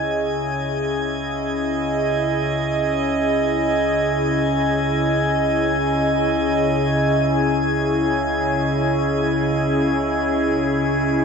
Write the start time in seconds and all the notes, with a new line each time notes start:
Already playing: C#2 C#3 C#4 E4 G#4 D#5 G#5 G#6